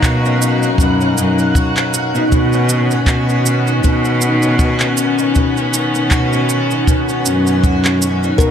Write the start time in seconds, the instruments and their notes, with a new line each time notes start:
Already playing: twelve-string acoustic guitar B2 C#4 D#4, string quartet F#3 A#3 D#4, synth texture F#6
0.03 cello B2, twelve-string acoustic guitar F#4, kick, clap, shaker
0.25 twelve-string acoustic guitar C#4, shaker
0.42 twelve-string acoustic guitar F#4, shaker
0.63 twelve-string acoustic guitar D#4, shaker
0.78 cello F#2, twelve-string acoustic guitar B2, kick, shaker
1.01 twelve-string acoustic guitar C#4, shaker
1.17 cello F#2, twelve-string acoustic guitar D#4, shaker
1.39 twelve-string acoustic guitar C#4, shaker
1.55 twelve-string acoustic guitar F#4, kick, shaker
1.77 twelve-string acoustic guitar C#4, clap, shaker
1.94 twelve-string acoustic guitar F#4, shaker
2.15 cello B2, twelve-string acoustic guitar D#4, shaker
2.32 twelve-string acoustic guitar B2, cello B2, string quartet D#3 B3 C#4, kick, shaker
2.53 twelve-string acoustic guitar C#4, shaker
2.69 twelve-string acoustic guitar D#4, shaker
2.91 twelve-string acoustic guitar C#4, shaker
3.06 cello B2, twelve-string acoustic guitar F#4, kick, clap, shaker
3.29 twelve-string acoustic guitar C#4, shaker
3.46 twelve-string acoustic guitar F#4, shaker
3.67 twelve-string acoustic guitar D#4, shaker
3.84 twelve-string acoustic guitar B2, cello B2, kick, shaker
4.05 twelve-string acoustic guitar C#4, shaker
4.21 twelve-string acoustic guitar D#4, shaker
4.42 twelve-string acoustic guitar C#4, shaker
4.59 twelve-string acoustic guitar F#4, kick, shaker
4.80 twelve-string acoustic guitar C#4, clap, shaker
4.97 twelve-string acoustic guitar F#4, shaker
5.19 twelve-string acoustic guitar D#4, shaker
5.35 twelve-string acoustic guitar B2, kick, shaker
5.57 twelve-string acoustic guitar C#4, shaker
5.74 twelve-string acoustic guitar D#4, shaker
5.95 twelve-string acoustic guitar C#4, shaker
6.11 cello B2, twelve-string acoustic guitar F#4, kick, clap, shaker
6.33 twelve-string acoustic guitar C#4, shaker
6.49 twelve-string acoustic guitar F#4, shaker
6.71 twelve-string acoustic guitar D#4, shaker
6.87 twelve-string acoustic guitar B2, kick, shaker
7.09 twelve-string acoustic guitar C#4, shaker
7.26 cello F#2, twelve-string acoustic guitar D#4, shaker
7.47 twelve-string acoustic guitar C#4, shaker
7.64 twelve-string acoustic guitar F#4, kick, shaker
7.85 twelve-string acoustic guitar C#4, clap, shaker
8.02 twelve-string acoustic guitar F#4, shaker
8.23 twelve-string acoustic guitar D#4, shaker
8.38 cello B2, twelve-string acoustic guitar B2, string quartet F#3 A#3 D#4, music box A#4, synth texture A#6, kick, shaker